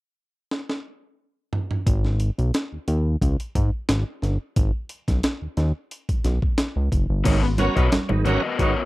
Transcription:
0.51 snare medium
0.69 snare medium
1.53 floor tom medium
1.71 floor tom medium
1.87 2.31 G#1 loud
1.87 kick loud
1.87 closed hi-hat medium
2.05 snare soft
2.20 closed hi-hat medium
2.38 2.52 B1 medium
2.38 closed hi-hat soft
2.54 snare medium
2.54 closed hi-hat medium
2.72 2.79 D#2 soft
2.88 3.16 D#2 medium
2.88 closed hi-hat medium
3.21 3.37 C#2 medium
3.21 kick medium
3.21 closed hi-hat medium
3.40 closed hi-hat soft
3.55 3.71 G#2 medium
3.55 kick loud
3.55 closed hi-hat medium
3.89 4.04 G#1 loud
3.89 snare loud
3.89 closed hi-hat medium
4.22 4.38 G1 loud
4.22 snare soft
4.22 closed hi-hat medium
4.56 4.72 G#1 loud
4.56 kick loud
4.56 closed hi-hat medium
4.89 closed hi-hat medium
5.08 5.21 B1 medium
5.08 kick medium
5.08 snare soft
5.08 closed hi-hat soft
5.23 snare loud
5.23 closed hi-hat medium
5.42 5.48 D#2 soft
5.57 5.72 D#2 loud
5.57 snare soft
5.57 closed hi-hat medium
5.91 closed hi-hat medium
6.09 6.15 B1 soft
6.09 kick medium
6.09 closed hi-hat soft
6.24 6.40 B1 medium
6.24 snare soft
6.24 closed hi-hat medium
6.42 kick medium
6.58 snare loud
6.58 closed hi-hat medium
6.76 6.89 C#2 medium
6.92 7.07 F#1 medium
6.92 kick medium
6.92 closed hi-hat medium
7.10 7.23 G1 medium
7.24 7.69 G#1 loud
7.24 7.42 G#2 medium
7.24 7.42 D#3 medium
7.24 7.45 B3 medium
7.24 7.43 F#4 medium
7.24 7.42 A#4 medium
7.24 7.42 C#5 medium
7.24 kick loud
7.24 closed hi-hat loud
7.24 crash loud
7.24 muted conga soft
7.24 low conga medium
7.43 muted overdriven electric guitar stroke soft
7.43 snare soft
7.58 7.75 B3 medium
7.58 7.73 C#4 medium
7.58 7.75 C#4 medium
7.58 7.73 F#4 medium
7.58 7.75 F#4 medium
7.58 7.73 A#4 medium
7.58 7.75 A#4 loud
7.58 7.73 C#5 loud
7.58 muted overdriven electric guitar stroke soft
7.58 closed hi-hat medium
7.58 muted conga soft
7.58 high conga medium
7.76 7.90 B1 medium
7.76 7.86 B3 medium
7.76 7.90 B3 medium
7.76 7.86 D#4 medium
7.76 7.86 F#4 medium
7.76 7.91 F#4 medium
7.76 7.83 F#4 soft
7.76 7.91 A#4 medium
7.76 7.83 A#4 soft
7.76 7.86 B4 medium
7.76 7.91 C#5 medium
7.76 kick loud
7.76 closed hi-hat soft
7.92 8.00 G#1 soft
7.92 8.00 F#4 soft
7.92 8.00 A#4 soft
7.92 muted overdriven electric guitar stroke soft
7.92 snare loud
7.92 closed hi-hat medium
7.92 muted conga soft
7.92 high conga medium
8.09 8.39 G#1 medium
8.09 8.25 G#2 medium
8.09 8.25 D#3 medium
8.09 muted overdriven electric guitar stroke medium
8.09 high conga medium
8.25 8.42 B3 medium
8.25 8.37 C#4 medium
8.25 8.42 C#4 medium
8.25 8.36 F#4 medium
8.25 8.42 F#4 medium
8.25 8.36 A#4 medium
8.25 8.42 A#4 medium
8.25 8.43 A#4 medium
8.25 8.37 C#5 medium
8.25 8.42 C#5 medium
8.25 closed hi-hat medium
8.25 low conga medium
8.43 8.57 B3 medium
8.43 8.58 F#4 medium
8.43 8.58 A#4 medium
8.43 8.57 D#5 medium
8.58 8.76 G#2 medium
8.58 8.76 D#3 medium
8.58 8.79 B3 medium
8.58 8.70 B3 medium
8.58 8.70 D#4 medium
8.58 8.79 F#4 medium
8.58 8.70 F#4 medium
8.58 8.80 A#4 medium
8.58 8.70 B4 medium
8.58 8.80 C#5 medium
8.58 kick medium
8.58 closed hi-hat medium
8.58 muted conga soft

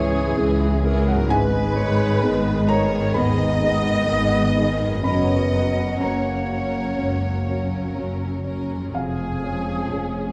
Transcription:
0.00 0.26 C#2 medium
0.00 1.29 G#2 medium
0.00 1.25 C#3 medium
0.00 0.81 E3 medium
0.00 1.05 E3 loud
0.00 0.81 G#3 medium
0.00 0.37 C#4 medium
0.00 0.81 C#4 medium
0.00 1.27 C#4 soft
0.00 0.37 E4 medium
0.00 1.29 E4 medium
0.00 0.38 G#4 medium
0.00 0.81 G#4 medium
0.00 0.83 G#4 medium
0.00 1.07 G#4 medium
0.00 1.24 G#4 soft
0.00 0.39 C#5 medium
0.00 1.03 E5 loud
0.00 1.08 F#5 medium
0.00 1.30 G#5 loud
0.37 1.18 C#2 medium
0.37 1.19 C#2 medium
0.37 0.79 C#4 medium
0.37 0.79 E4 medium
0.37 0.86 G#4 medium
0.37 0.79 G#4 medium
0.82 1.30 E3 medium
0.82 1.29 G#3 medium
0.82 1.29 C#4 medium
0.82 1.25 E4 medium
0.82 1.28 G#4 medium
0.82 1.25 G#4 medium
0.82 1.30 A#4 medium
1.06 1.31 F#3 medium
1.06 1.29 A#4 medium
1.06 1.29 F#5 medium
1.12 4.99 G#2 medium
1.16 5.01 B3 medium
1.21 5.04 D#4 medium
1.25 5.06 G#4 medium
1.25 2.68 B4 medium
1.29 2.12 G#1 medium
1.29 1.74 G#2 medium
1.29 2.12 G#2 medium
1.29 2.67 G#3 loud
1.29 2.70 B4 loud
1.29 1.75 B4 medium
1.29 2.65 G#5 loud
1.76 2.68 D#3 medium
1.76 2.68 G#3 medium
1.76 2.67 B3 medium
1.76 2.18 D#4 medium
1.76 2.67 G#4 medium
1.76 2.19 G#4 medium
1.76 2.24 C#5 medium
2.22 3.05 G#1 medium
2.22 3.04 G#2 loud
2.22 2.65 B3 medium
2.22 2.65 D#4 medium
2.22 2.65 G#4 medium
2.22 4.76 D#5 medium
2.68 3.61 D#3 medium
2.68 3.61 G#3 medium
2.68 3.60 B3 medium
2.68 3.11 D#4 medium
2.68 3.11 G#4 medium
2.68 3.60 G#4 medium
2.68 3.16 A#4 loud
2.68 3.15 C#5 loud
2.68 3.16 C#5 medium
2.68 3.12 A#5 loud
3.14 3.99 G#1 medium
3.14 3.60 D#2 medium
3.14 3.98 G#2 medium
3.14 4.85 B3 loud
3.14 5.02 D#5 loud
3.14 5.05 D#5 loud
3.14 5.00 B5 loud
3.61 4.54 B3 medium
3.61 4.04 D#4 medium
3.61 4.05 G#4 medium
3.61 4.54 G#4 medium
3.65 4.56 D#3 medium
3.65 4.56 G#3 medium
4.07 4.93 G#1 medium
4.07 4.93 G#2 medium
4.07 4.51 B3 soft
4.07 4.52 D#4 medium
4.07 4.52 G#4 medium
4.55 5.05 G#3 medium
4.55 5.03 B3 medium
4.55 5.00 D#4 medium
4.55 5.03 G#4 medium
4.55 5.00 G#4 medium
4.59 5.05 D#3 medium
4.86 8.76 F#2 medium
4.90 8.80 C#4 soft
4.94 8.84 F#4 soft
4.99 5.50 F#2 medium
4.99 5.98 B3 medium
4.99 8.89 C#5 soft
5.03 5.90 F#1 medium
5.03 5.89 F#2 medium
5.03 5.53 F#3 medium
5.03 5.51 C#4 medium
5.03 5.53 C#4 medium
5.03 5.51 A#4 medium
5.03 5.99 D#5 medium
5.03 6.00 D#5 loud
5.03 8.40 F#5 medium
5.03 5.97 B5 loud
5.51 6.49 F#3 medium
5.51 6.48 C#4 medium
5.51 6.49 C#4 medium
5.51 5.96 F#4 soft
5.51 6.47 A#4 medium
5.51 5.97 C#5 soft
5.99 6.87 F#1 medium
5.99 6.87 F#2 medium
5.99 8.45 A#3 medium
5.99 6.45 C#4 medium
5.99 6.45 F#4 soft
5.99 6.45 C#5 medium
5.99 8.45 C#5 medium
5.99 8.41 A#5 medium
6.48 7.46 F#3 soft
6.48 7.45 C#4 medium
6.48 7.46 C#4 medium
6.48 6.93 F#4 soft
6.48 7.45 A#4 medium
6.48 6.94 C#5 medium
6.98 7.85 F#1 medium
6.98 7.45 C#2 soft
6.98 7.84 F#2 medium
7.46 8.44 F#3 soft
7.46 8.42 C#4 soft
7.46 8.44 C#4 medium
7.46 7.92 F#4 soft
7.46 8.43 A#4 soft
7.46 7.91 C#5 soft
7.95 8.82 F#1 medium
7.95 8.82 F#2 medium
7.95 8.40 C#4 soft
7.95 8.40 F#4 soft
7.95 8.41 C#5 soft
8.44 8.93 F#3 soft
8.44 8.92 C#4 soft
8.44 8.93 C#4 medium
8.44 8.89 F#4 soft
8.44 8.93 A#4 medium
8.44 8.89 C#5 soft
8.76 10.32 F2 soft
8.81 10.32 C#4 soft
8.85 10.32 G#4 soft
8.90 9.40 F2 medium
8.90 10.32 G#4 medium
8.90 10.32 C#5 soft
8.90 9.86 G#5 medium
8.94 9.79 F1 medium
8.94 9.79 F2 medium
8.94 10.32 F3 medium
8.94 10.32 G#4 medium
8.94 10.32 F5 medium
9.42 10.32 G#3 soft
9.42 10.32 C#4 soft
9.42 10.32 C#4 medium
9.42 10.32 G#4 soft
9.42 9.87 G#4 soft
9.42 9.87 C#5 soft
9.91 10.32 F1 medium
9.91 10.32 F2 medium
9.91 10.32 C#4 soft
9.91 10.32 G#4 soft
9.91 10.32 C#5 soft
9.91 10.32 G#5 medium

